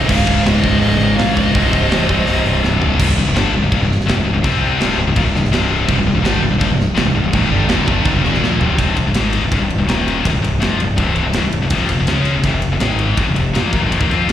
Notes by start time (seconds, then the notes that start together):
0.04 C#5 F5
0.08 C#1 C#2 G#2 C#3, kick, crash
0.27 C#1, kick, open hi-hat
0.45 C#1, snare, open hi-hat
0.60 C5 D#5, open hi-hat
0.64 C#1, kick
0.79 C#1 G#4 D#5, open hi-hat
1.00 G#1, open hi-hat
1.15 A#1 C#5 F5, open hi-hat
1.20 snare
1.34 G#2 C#3 C5 D#5, kick, open hi-hat
1.39 C#2
1.54 C1 C2 G2 C3, kick, open hi-hat
1.73 C1, kick, open hi-hat
1.91 C1, snare, open hi-hat
2.09 C1, kick, open hi-hat
2.27 C1, open hi-hat
2.46 C1, open hi-hat
2.64 C1, snare
2.80 C1 C2 G2 C3, floor tom
2.99 C1 C2 G2, kick, crash
3.08 C1 C2 G2
3.18 C1 C2 G2
3.27 C1 C2 G2
3.35 G1 G2 D3 G3, snare, crash
3.53 C1 C2 G2
3.62 C1 C2 G2
3.72 A#1 A#2 F3, kick, crash
3.80 C1 C2 G2
3.92 snare
4.01 snare
4.06 F1 F2 C3, snare, crash
4.15 C1 C2 G2
4.24 C1 C2 G2
4.33 C1 C2 G2
4.43 C2 C3 G3 C4, kick, crash
4.79 C1 C2 G2 C3, snare, crash
4.98 C1 C2 G2
5.07 C1 C2 G2
5.16 D#1 D#2 A#2, kick, crash
5.25 C1 C2 G2
5.34 C1 C2 G2, snare
5.45 snare
5.51 C1 C2 G2 C3, snare, crash
5.86 C1 C2 G2, kick, crash
5.97 C1 C2 G2
6.06 C1 C2 G2
6.15 C1 C2 G2
6.22 G1 G2 D3 G3, crash
6.26 snare
6.42 C1 C2 G2
6.51 C1 C2 G2
6.59 A#1 A#2 F3, kick, crash
6.64 F3
6.68 C1 C2 G2
6.73 C2
6.80 snare
6.95 F1 F2 C3, snare, crash
7.04 C1 C2 G2
7.08 C2
7.15 C1 C2 G2
7.23 C1 C2 G2
7.33 D1 D2 A2, kick, crash
7.42 C1 C2 G2
7.50 G1 G2 D3 G3
7.68 D#1 D#2 A#2 D#3, snare, crash
7.86 G1 G2 D3 G3, kick
8.05 G#1 G#2 D#3, kick, crash
8.12 C1 C2 G2
8.21 D#1 D#2 A#2 D#3, snare
8.34 snare
8.40 A#1 A#2 F3 A#3, snare
8.58 C1 C2 G2 C3, floor tom
8.78 C1 C2 G2 C3, kick, ride
8.95 C1 C2 G2, ride
9.04 C1 C2 G2
9.14 G#1 G#2 D#3 G#3, snare, ride
9.33 ride
9.42 C1 C2 G2
9.51 C1 C2 G2, kick, ride
9.60 C1 C2 G2
9.70 ride
9.78 C1 C2 G2
9.88 D#1 D#2 A#2 D#3, snare, ride
10.08 ride
10.24 C1 C2 G2, kick, ride
10.33 C1 C2 G2
10.42 C1 C2 G2, ride
10.60 F1 F2 C3 F3, snare, ride
10.78 C1 C2 G2, ride
10.97 C1 C2 G2 C3, kick, ride
11.16 ride
11.25 C1 C2 G2
11.33 D1 D2 A2, snare, ride
11.44 C1 C2 G2
11.53 ride
11.62 C1 C2 G2
11.70 F1 F2 C3 F3, kick, ride
11.88 F1 F2 C3, ride
11.99 F1 F2 C3
12.07 C#2 C#3 G#3 C#4, snare, ride
12.25 ride
12.35 F1 F2 C3
12.44 F1 F2 C3, kick, ride
12.53 F1 F2 C3
12.62 ride
12.72 F1 F2 C3
12.80 G#1 G#2 D#3 G#3, snare, ride
12.99 ride
13.17 F1 F2 C3, kick, ride
13.26 F1 F2 C3
13.36 F1 F2 C3, ride
13.54 A#1 A#2 F3 A#3, snare, ride
13.72 D#1 D#2 A#2, kick, ride
13.82 G1 G2 D3
13.90 F1 F2 C3, ride
14.01 D#2 D#3 A#3, kick
14.09 F2 F3 C4 F4, ride
14.28 F1 F2 C3 F3, ride